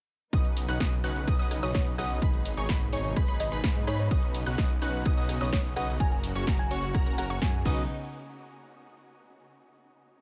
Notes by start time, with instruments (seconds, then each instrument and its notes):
0.33 detuned saw bass B1, string section C#3 B3 D#4, supersaw synth C#4 D#4 F#4 B4 D#5, synth pluck D#6, kick, closed hi-hat, tambourine
0.45 closed hi-hat, tambourine
0.57 open hi-hat, ride, tambourine
0.68 detuned saw bass B1, supersaw synth C#4 D#4 F#4 B4 F#5, synth pluck F#6, closed hi-hat, tambourine
0.80 detuned saw bass B1, supersaw synth B4, synth pluck D#6, kick, snare, closed hi-hat, tambourine
0.92 closed hi-hat, tambourine
1.04 detuned saw bass B1, supersaw synth C#4 D#4 F#4 B4 F#5, synth pluck F#6, open hi-hat, ride, tambourine
1.16 closed hi-hat, tambourine
1.27 detuned saw bass B1, supersaw synth C#4 D#4 F#4 B4 D#5, synth pluck D#6, kick, cross-stick, closed hi-hat, tambourine
1.39 detuned saw bass B1, supersaw synth C#4 D#4 F#4 B4 D#5, synth pluck D#6, closed hi-hat, tambourine
1.51 cross-stick, open hi-hat, ride, tambourine
1.63 detuned saw bass B1, supersaw synth C#4 D#4 F#4 B4 D#5, fm electric piano C#5, synth pluck D#6, closed hi-hat, tambourine
1.75 detuned saw bass B1, supersaw synth C#4 D#4 F#4 B4 D#5, fm electric piano C#5, synth pluck D#6, kick, snare, closed hi-hat, tambourine
1.87 closed hi-hat, tambourine
1.98 detuned saw bass B1, supersaw synth C#4 D#4 F#4 B4 D#5, fm electric piano F#5, synth pluck D#6, cross-stick, open hi-hat, ride, tambourine
2.10 closed hi-hat, tambourine
2.22 detuned saw bass G#1, string section B2 G#3, supersaw synth D#4 G#4 B4, synth pluck B5, kick, closed hi-hat, tambourine
2.34 closed hi-hat, tambourine
2.45 open hi-hat, ride, tambourine
2.57 detuned saw bass G#1, supersaw synth D#4 G#4 C#5, synth pluck C#6, closed hi-hat, tambourine
2.69 detuned saw bass G#1, supersaw synth B4, synth pluck B5, kick, snare, closed hi-hat, tambourine
2.81 closed hi-hat, tambourine
2.93 detuned saw bass G#1, supersaw synth D#4 G#4 C#5, fm electric piano C#5, synth pluck C#6, open hi-hat, ride, tambourine
3.04 fm electric piano C#5, closed hi-hat, tambourine
3.16 detuned saw bass G#1, supersaw synth D#4 G#4 B4, synth pluck B5, kick, cross-stick, closed hi-hat, tambourine
3.28 detuned saw bass G#1, supersaw synth D#4 G#4 B4, synth pluck B5, closed hi-hat, tambourine
3.40 fm electric piano D#5, cross-stick, open hi-hat, ride, tambourine
3.52 detuned saw bass G#1, supersaw synth D#4 G#4 B4, synth pluck B5, closed hi-hat, tambourine
3.64 detuned saw bass G#2, synth pluck B5, kick, snare, closed hi-hat, tambourine
3.76 closed hi-hat, tambourine
3.87 detuned saw bass G#2, supersaw synth D#4 G#4 B4, fm electric piano C#5, synth pluck B5, cross-stick, open hi-hat, ride, tambourine
3.99 fm electric piano C#5, closed hi-hat, tambourine
4.11 detuned saw bass B1, string section C#3 B3, supersaw synth C#4 D#4 F#4 B4 D#5, synth pluck D#6, kick, closed hi-hat, tambourine
4.23 closed hi-hat, tambourine
4.35 open hi-hat, ride, tambourine
4.46 detuned saw bass B1, supersaw synth C#4 D#4 F#4 B4 F#5, synth pluck F#6, closed hi-hat, tambourine
4.58 detuned saw bass B1, supersaw synth C#4 D#4 F#4 B4 D#5, synth pluck D#6, kick, snare, closed hi-hat, tambourine
4.70 closed hi-hat, tambourine
4.82 detuned saw bass B1, supersaw synth C#4 D#4 F#4 B4 F#5, synth pluck F#6, open hi-hat, ride, tambourine
4.94 closed hi-hat, tambourine
5.05 detuned saw bass B1, supersaw synth C#4 D#4 F#4 B4 D#5, synth pluck D#6, kick, cross-stick, closed hi-hat, tambourine
5.17 detuned saw bass B1, supersaw synth C#4 D#4 F#4 B4 D#5, synth pluck D#6, closed hi-hat, tambourine
5.29 cross-stick, open hi-hat, ride, tambourine
5.41 detuned saw bass B1, supersaw synth C#4 D#4 F#4 B4 D#5, fm electric piano C#5, synth pluck D#6, closed hi-hat, tambourine
5.53 detuned saw bass B1, supersaw synth C#4 D#4 B4 D#5, fm electric piano C#5, synth pluck D#6, kick, snare, closed hi-hat, tambourine
5.64 closed hi-hat, tambourine
5.76 detuned saw bass B1, supersaw synth C#4 D#4 F#4 B4 D#5, fm electric piano F#5, synth pluck D#6, cross-stick, open hi-hat, ride, tambourine
5.88 closed hi-hat, tambourine
6.00 detuned saw bass F#1, string section A#3 F#4, supersaw synth C#4 F#4 A#4, fm electric piano G#5, synth pluck A#5, kick, closed hi-hat, tambourine
6.12 fm electric piano G#5, closed hi-hat, tambourine
6.24 open hi-hat, ride, tambourine
6.35 detuned saw bass F#1, supersaw synth C#4 F#4 C#5, synth pluck C#6, closed hi-hat, tambourine
6.47 detuned saw bass F#1, supersaw synth C#4 F#4 A#4, synth pluck A#5, kick, snare, closed hi-hat, tambourine
6.59 fm electric piano G#5, closed hi-hat, tambourine
6.71 detuned saw bass F#1, supersaw synth C#4 F#4 C#5, synth pluck C#6, open hi-hat, ride, tambourine
6.83 closed hi-hat, tambourine
6.94 detuned saw bass F#1, supersaw synth C#4 F#4 A#4, synth pluck A#5, kick, cross-stick, closed hi-hat, tambourine
7.06 detuned saw bass F#1, supersaw synth C#4 F#4 A#4, synth pluck A#5, closed hi-hat, tambourine
7.18 detuned saw bass F#1, supersaw synth C#4 F#4 A#4, fm electric piano F#5, synth pluck A#5, cross-stick, open hi-hat, ride, tambourine
7.30 detuned saw bass F#1, supersaw synth C#4 F#4 C#5, fm electric piano F#5, synth pluck C#6, closed hi-hat, tambourine
7.42 detuned saw bass F#2, supersaw synth C#4 F#4 G#4, synth pluck G#5, kick, snare, closed hi-hat, tambourine
7.54 closed hi-hat, tambourine
7.65 detuned saw bass B1, string section C#3 B3 D#4, supersaw synth C#4 D#4 F#4 B4 D#5, synth pluck D#6, kick, crash